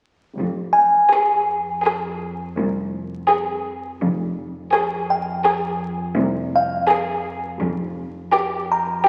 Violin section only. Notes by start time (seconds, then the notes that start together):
1.11 G#4
1.84 G#4
3.29 G#4
4.73 G#4
5.46 G#4
6.89 G#4
8.33 G4